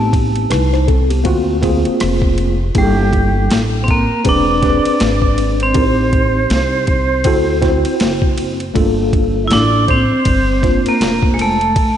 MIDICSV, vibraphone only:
0, 0, Header, 1, 2, 480
1, 0, Start_track
1, 0, Tempo, 750000
1, 1764, Time_signature, 4, 2, 24, 8
1, 7663, End_track
2, 0, Start_track
2, 0, Title_t, "Vibraphone"
2, 0, Program_c, 0, 11
2, 0, Note_on_c, 0, 57, 72
2, 69, Note_off_c, 0, 57, 0
2, 1780, Note_on_c, 0, 55, 93
2, 2226, Note_off_c, 0, 55, 0
2, 2457, Note_on_c, 0, 60, 62
2, 2488, Note_off_c, 0, 60, 0
2, 2500, Note_on_c, 0, 58, 85
2, 2739, Note_off_c, 0, 58, 0
2, 2744, Note_on_c, 0, 62, 94
2, 3571, Note_off_c, 0, 62, 0
2, 3603, Note_on_c, 0, 60, 86
2, 5346, Note_off_c, 0, 60, 0
2, 6064, Note_on_c, 0, 64, 75
2, 6092, Note_off_c, 0, 64, 0
2, 6100, Note_on_c, 0, 62, 100
2, 6316, Note_off_c, 0, 62, 0
2, 6339, Note_on_c, 0, 60, 101
2, 6967, Note_on_c, 0, 58, 83
2, 6973, Note_off_c, 0, 60, 0
2, 7257, Note_on_c, 0, 56, 54
2, 7266, Note_off_c, 0, 58, 0
2, 7289, Note_off_c, 0, 56, 0
2, 7306, Note_on_c, 0, 57, 80
2, 7663, Note_off_c, 0, 57, 0
2, 7663, End_track
0, 0, End_of_file